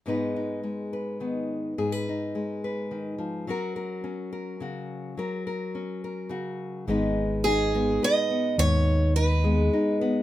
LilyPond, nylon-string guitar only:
\new Staff \with { instrumentName = "Nylon-string guitar" } { \time 3/4 \key gis \minor \tempo 4 = 106 << { <gis b dis' b'>8 dis'4 b'8 b4 | gis'16 b'16 dis'4 b'4. | <cis' fis' ais'>8 ais'4 ais'8 fis'4 | ais'8 ais'4 ais'8 fis'4 |
<gis b dis' b'>4 dis'8 b8 b'8 b8~ | b4 dis'8 b8 dis'8 b8 | } \\ { gis,4 gis4 dis4 | gis,4 gis4 dis8 eis8 | fis4 cis'4 cis4 | fis4 cis'4 cis4 |
gis,4. gis4. | gis,4. gis4. | } >> }